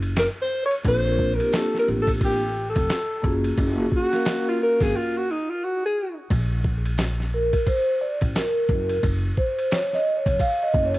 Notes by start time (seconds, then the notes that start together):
Already playing: F#1
0.02 ride
0.16 A#4, snare, hi-hat pedal, ride
0.42 C5
0.65 C#5
0.71 ride
0.84 A#1 A#3 C4 D4 F4 A4, kick, ride
0.88 C5
1.04 A#3 C4 D4 F4 A#4
1.19 kick
1.34 A#3 A#4
1.39 C4 D4 F4 G4, ride
1.53 A4, snare, hi-hat pedal, ride
1.74 snare
1.79 A#4
1.88 A1
2.02 A4
2.07 kick, ride
2.21 G4, kick, ride
2.69 A4
2.76 F1, kick, ride
2.90 snare, hi-hat pedal, ride
3.22 F#1 A#3 C#4 F4 F#4 G#4, kick
3.44 ride
3.58 F#1, kick, ride
3.77 A#3 C#4 F4 F#4 G#4
3.92 kick
3.96 F#4
4.11 A#3 C#4 F#4 A#4 F5, snare, ride
4.25 snare, hi-hat pedal, ride
4.48 F4
4.63 A#4
4.80 G#1 G#4, kick, snare, ride
4.96 F4
5.17 F#4
5.31 D#4
5.50 F4
5.64 F#4
5.85 G#4
6.30 A#1, kick, ride
6.64 kick
6.85 ride
6.98 snare, hi-hat pedal, ride
7.20 snare
7.34 A#4
7.53 kick, ride
7.67 C5, kick, ride
8.01 D5
8.21 A1, kick, ride
8.35 A#4, snare, hi-hat pedal, ride
8.69 F#1, kick
8.89 ride
9.03 F#1, kick, ride
9.37 C5, kick
9.59 ride
9.71 C#5, snare, hi-hat pedal, ride
9.93 D#5, snare
10.17 C#5
10.26 F1, kick, ride
10.39 F5, kick, ride
10.63 D#5
10.74 F#1, kick
10.86 C#5
10.94 ride